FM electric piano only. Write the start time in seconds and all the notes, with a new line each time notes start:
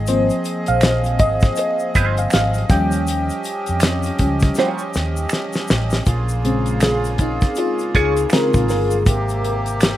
Already playing: D#5
0.08 F3 A#3 C4 C5
0.68 F5
1.19 D#5
2.19 F5
2.33 F5
2.71 F3 G3 C#4 G5
4.20 F3 G3 C#4
6.44 C#3 G#3 C4
6.83 G#4
7.21 D#4
7.58 F4
7.96 G#4
8.32 C#3 G#3 C4 A#4
8.70 A#4